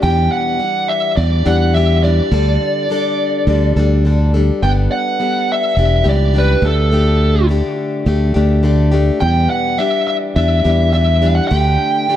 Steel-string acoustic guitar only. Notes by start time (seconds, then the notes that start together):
0.02 E2 B2 E3 G3 D4 G4
0.59 E3 G3 D4 G4
1.17 E3 G3 D4 G4
1.45 E3 G3 D4 G4
1.74 E3 G3 D4 G4
2.03 E3 G3 D4 G4
2.31 D3 G3 D4 A4
2.89 D3 G3 D4 A4
3.47 D3 G3 D4 A4
3.77 G3 D4 A4
4.05 D3 G3 D4 A4
4.34 G3 D4 A4
4.63 G3 B3 D4 A4
5.20 G3 B3 D4 A4
5.76 E3 G3 D4 G4
6.04 E3 G3 D4 G4
6.33 E3 G3 D4 G4
6.62 A3 D4 G4
6.92 D3 A3 D4 G4
7.49 D3 A3 D4 G4
8.06 D3 A3 D4 G4
8.34 A3 D4 G4
8.63 D3 A3 D4 G4
8.92 A3 D4 G4
9.20 E2 B2 E3 G3 D4 G4
9.78 E3 G3 D4 G4
10.36 E3 G3 D4 G4
10.64 E3 G3 D4 G4
10.92 E3 G3 D4 G4
11.22 E3 G3 D4 G4
11.51 D3 A3 D4 G4
12.08 D3 A3 D4 G4